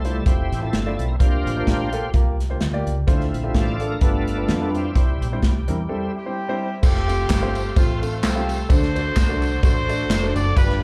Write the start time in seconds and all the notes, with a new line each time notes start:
Already playing: C2 A4 C5
0.05 G3 A3 E4 F4 C5, closed hi-hat
0.15 A4
0.26 F1 A3 C4 E4 F4 G4 C5, kick, closed hi-hat
0.52 A1, snare, closed hi-hat
0.61 A3 C4 E4 F4 G4 A4
0.73 G1, snare, closed hi-hat
0.86 A3 E4 F4 D5
0.99 B1, closed hi-hat
1.08 A#4
1.19 C2 C3 F3 A#3 D4 F4 G4 C5, kick, closed hi-hat
1.46 A1, closed hi-hat
1.56 A#3 F4 G4 C5
1.67 A#1, kick, snare, closed hi-hat
1.92 A#3 F4 G4 A4, closed hi-hat
2.14 C2 A#3 F4 G4 A#4, kick, closed hi-hat
2.40 snare, closed hi-hat
2.50 A#3 F4 G4 C5
2.61 D2, snare, closed hi-hat
2.73 A#3 F4 G4 D5
2.87 C#2, closed hi-hat
3.07 D2 D3 F3 A3 C4 D4 E4 F4 C5, kick, closed hi-hat
3.21 snare
3.34 A#1, closed hi-hat
3.44 A3 D4 F4 G4
3.54 A1 F4 A4 D5, kick, snare, closed hi-hat
3.80 A3 D4 F4 A4, closed hi-hat
3.91 A#4
4.01 G1 G2 G3 A3 B3 D4 F4 A4 B4, kick, closed hi-hat
4.27 closed hi-hat
4.37 G3 D4 F4 B4
4.48 F2, snare, closed hi-hat
4.61 G3 D4 F4 B4
4.75 C4 E4 G4, closed hi-hat
4.94 C2 C3 G3 C4 E4 C5, kick, closed hi-hat
5.21 A#1, closed hi-hat
5.32 G3 C4 E4 C5
5.42 C2, kick, snare, closed hi-hat
5.68 E2 G3 C4 E4 A#4, closed hi-hat
5.88 G3 C4 E4 A4
6.16 C4 E4 G4
6.26 G3 C4 E4 C5
6.48 G3 C4 E4 C5
6.82 F1 A3 C4 F4 G4 A4 C5 F5 C6, kick, crash, tambourine
6.96 snare
7.07 A3 C4 F4 G4, ride, tambourine
7.30 G1, kick, snare, clap, ride, tambourine
7.42 A3 C4 F4 C5
7.55 ride, tambourine
7.76 A1 A3 C4 F4 C5, kick, ride, tambourine
8.01 A3 C4 F4 A4, ride, tambourine
8.23 C2 C4 F4 A4, snare, clap, ride, tambourine
8.35 A3 C4 F4 G4
8.49 ride, tambourine
8.69 D2 D3 A3 D4 F#4 A4 C5 D5 F#5 C6, kick, ride, tambourine
8.83 snare
8.95 A3 D4 F#4 C5, ride, tambourine
9.16 C2, kick, snare, clap, ride, tambourine
9.29 A3 D4 F#4 A4
9.42 ride, tambourine
9.63 A1 A3 D4 F#4 A4 C5, kick, ride, tambourine
9.89 A3 D4 F#4 D5, ride, tambourine
10.10 F1, snare, clap, ride, tambourine
10.23 A3 D4 F#4 C5
10.36 F#1 D5, ride, tambourine
10.56 G1 G2 G3 D4 F4 G4 B4 D5 F5 B5, kick, ride, tambourine
10.69 snare